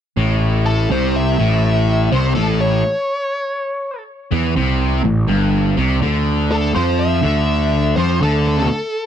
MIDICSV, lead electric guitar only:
0, 0, Header, 1, 2, 480
1, 0, Start_track
1, 0, Tempo, 732959
1, 107, Time_signature, 4, 2, 24, 8
1, 5934, End_track
2, 0, Start_track
2, 0, Title_t, "Lead electric guitar"
2, 0, Program_c, 0, 29
2, 430, Note_on_c, 0, 69, 78
2, 584, Note_off_c, 0, 69, 0
2, 599, Note_on_c, 0, 72, 80
2, 748, Note_off_c, 0, 72, 0
2, 761, Note_on_c, 0, 76, 88
2, 1375, Note_off_c, 0, 76, 0
2, 1391, Note_on_c, 0, 72, 74
2, 1536, Note_off_c, 0, 72, 0
2, 1538, Note_on_c, 0, 69, 74
2, 1698, Note_off_c, 0, 69, 0
2, 1706, Note_on_c, 0, 73, 91
2, 2640, Note_off_c, 0, 73, 0
2, 4267, Note_on_c, 0, 69, 79
2, 4421, Note_off_c, 0, 69, 0
2, 4424, Note_on_c, 0, 72, 86
2, 4579, Note_on_c, 0, 76, 90
2, 4580, Note_off_c, 0, 72, 0
2, 5203, Note_off_c, 0, 76, 0
2, 5213, Note_on_c, 0, 72, 88
2, 5374, Note_off_c, 0, 72, 0
2, 5387, Note_on_c, 0, 69, 90
2, 5542, Note_off_c, 0, 69, 0
2, 5550, Note_on_c, 0, 69, 88
2, 5934, Note_off_c, 0, 69, 0
2, 5934, End_track
0, 0, End_of_file